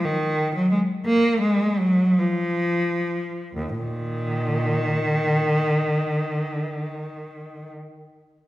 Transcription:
0.05 0.54 D#3 medium
0.55 0.71 F#3 medium
0.72 0.80 G#3 medium
1.06 1.41 A#3 medium
1.41 1.78 G#3 medium
1.79 2.18 F#3 medium
2.19 3.55 F3 medium
3.56 3.78 D#2 medium
3.79 5.42 A#2 medium
3.79 7.68 D#3 medium

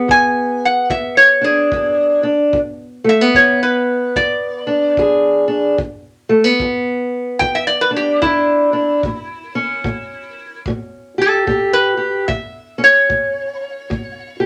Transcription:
0.00 3.04 B3 medium
0.00 1.44 G#4 medium
0.08 0.84 E2 medium
0.08 0.63 G#5 loud
0.08 kick medium
0.65 0.90 F#5 medium
0.90 1.66 E2 medium
0.90 1.17 E5 medium
0.90 kick medium
1.17 1.44 C#5 medium
1.41 1.73 D4 medium
1.41 2.24 G#4 medium
1.72 2.48 E2 medium
1.72 2.23 D4 medium
1.72 kick medium
2.23 2.57 D4 medium
2.53 3.29 E2 medium
2.53 kick medium
3.04 3.21 A3 medium
3.09 3.35 E5 medium
3.21 5.79 B3 soft
3.34 4.11 E2 medium
3.34 3.62 C#5 medium
3.34 kick medium
3.63 4.15 B4 medium
4.16 4.91 E2 medium
4.16 4.95 D5 medium
4.16 kick medium
4.67 5.46 D4 medium
4.97 5.73 E2 medium
4.97 5.76 G#4 medium
4.97 kick medium
5.48 5.75 D4 medium
5.78 6.53 E2 medium
5.78 kick medium
6.29 6.44 A3 medium
6.44 9.03 B3 soft
6.60 7.35 E2 medium
6.60 kick medium
7.39 8.16 E2 medium
7.39 7.56 G5 medium
7.39 kick medium
7.55 7.66 E5 medium
7.67 7.89 D5 medium
7.81 7.90 B4 medium
7.91 8.22 D4 medium
7.96 8.21 G4 medium
8.22 8.97 E2 medium
8.22 8.72 D4 medium
8.22 10.61 E4 medium
8.22 kick medium
8.73 9.00 D4 medium
9.03 9.79 A2 medium
9.03 kick medium
9.55 12.25 C#4 medium
9.84 10.59 A2 medium
9.84 kick medium
10.66 11.41 A2 medium
10.66 kick medium
11.18 11.46 G4 medium
11.18 11.73 A4 medium
11.47 12.21 A2 medium
11.47 11.96 G4 medium
11.47 kick medium
11.73 12.26 B4 medium
11.97 12.25 G4 medium
12.28 13.03 A2 medium
12.28 12.80 E5 medium
12.28 kick medium
12.78 14.46 C#4 medium
12.84 14.46 C#5 medium
13.09 13.84 A2 medium
13.09 kick medium
13.90 14.46 A2 medium
13.90 kick medium
14.40 14.46 G4 medium

